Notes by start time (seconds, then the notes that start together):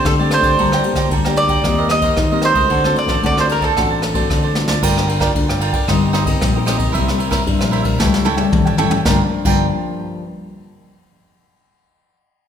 Already playing: A3 C4 G4 C5 D5
0.05 A2 D3 A4, kick, cross-stick, ride
0.19 A3 C4 G4 C5 D5
0.31 C5, cross-stick, ride
0.41 D3 G4 C5 D5, kick, ride
0.58 D2 G3 A#3 D4 G4 A4 D5 G5 A#5, kick, ride
0.72 D5 G5 A#5, cross-stick
0.84 A#3 D4 G4, muted cavaquinho stroke, ride
0.94 D2 D5 G5 A#5, kick, cross-stick, ride
1.11 D2 G3 A4 D5 G5 A#5, kick, ride
1.25 A#3 D4 G4 D5 G5 A#5, cross-stick
1.36 D5, ride
1.49 D5 G5 A#5, kick, ride
1.64 D#2 D#3 A#3 C4 D#4 G4 A#4 C5 D#5, kick, cross-stick, ride
1.78 A#4 C5 D#5
1.89 A#3 C4 G4 D#5, muted cavaquinho stroke, cross-stick, ride
2.02 A#4 C5 D#5, kick, ride
2.17 D#3, kick, cross-stick, ride
2.32 A#3 C4 G4 A#4 C5 D#5
2.42 C5, cross-stick, ride
2.53 C#2 A3 C4 F#4 A#4 C5 D#5, kick, ride
2.70 D2 D3 F#4 A4 C5 D5, kick, ride
2.84 A3 C4 F#4 A4 C5 D5, cross-stick
2.96 D5, muted cavaquinho stroke, ride
3.06 A1 C5 D5, kick, cross-stick, ride
3.11 A4
3.23 D2 A2 A3 C4 F#4 A4 C5 D5, kick, ride
3.37 A4 C5 D5, cross-stick
3.49 A#4, ride
3.61 A4 C5 D5, kick, ride
3.77 A1 D3 A3 C4 F#4 A4 C5 D5, kick, cross-stick, ride
3.90 A4 C5 D5
4.02 muted cavaquinho stroke, cross-stick, ride
4.14 A3 C4 F#4 A4 C5 D5, kick, ride
4.30 A2 D3, kick, cross-stick, ride
4.43 A4 C5 D5
4.55 A3 C4 F#4, snare
4.68 D2 A4 C5 D5, snare
4.82 G1 G3 D4 F4 A#4 D5 G5, kick, crash
4.97 D4 F4 A#4, cross-stick
5.08 F4 A#4 D5 G5, ride
5.20 F4 A#4 D5 G5, kick, cross-stick, ride
5.35 D2 D3 D4 F4 A#4, kick, ride
5.49 G1 A#4 D5 G5, cross-stick
5.60 F4 A#4 D5 G5, ride
5.73 A#4 D5 G5, kick, ride
5.88 G1 G3 C4 D#4 G4 A#4 C5 D#5, kick, cross-stick, ride
6.13 D#4 G4 C5 D#5, cross-stick, ride
6.25 C4 D#4 G4 A#4 C5 D#5, kick, ride
6.41 A#1 G3, kick, cross-stick, ride
6.54 C4 D#4 G4 A#4 C5 D#5
6.65 C4 D#4 G4 A#4 C5 D#5, cross-stick, ride
6.78 G4 C5 D#5, kick, ride
6.92 C2 C3 G3 A#3 E4 A#4 C5 E5, kick, ride
6.97 E4
7.08 G3 A#3 E4, cross-stick
7.18 E4 A#4 C5 E5, ride
7.31 E4 A#4 C5 E5, kick, cross-stick, ride
7.47 G2 G3 A#3 E4, kick, ride
7.59 A#1 A#4 C5 E5, cross-stick
7.71 E4 A#4 C5 E5, ride
7.83 A#4 C5 E5, kick, ride
7.99 C#2 C#3 G3 A3 E4 A4 C#5 G5, kick, snare
8.14 snare
8.25 E4 A4 C#5 G5, high tom
8.37 G3 A3 E4 A4 C#5 G5, high tom
8.52 A1 C#3, kick, mid tom
8.65 A4 C#5 G5, mid tom
8.77 G3 A3 E4 A4 C#5 G5, floor tom
8.90 A4 C#5 G5, floor tom
9.05 G1 G2 F3 A#3 D4 F4 A#4 D5 G5, kick, snare
9.45 G1 G2 F3 A#3 D4 F4 A#4 D5 G5, kick, crash